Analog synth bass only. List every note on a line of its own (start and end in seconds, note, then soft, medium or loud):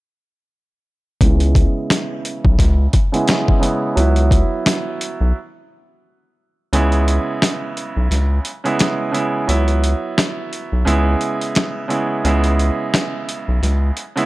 1.21 1.67 C#2 loud
2.45 2.56 B1 medium
2.59 2.88 C#2 loud
3.97 4.43 C#2 loud
5.21 5.32 B1 medium
6.73 7.18 C#2 loud
7.97 8.08 B1 loud
8.11 8.39 C#2 loud
9.49 9.94 C#2 loud
10.72 10.84 B1 medium
10.87 11.15 C#2 loud
12.25 12.70 C#2 loud
13.48 13.60 B1 loud
13.62 13.91 C#2 loud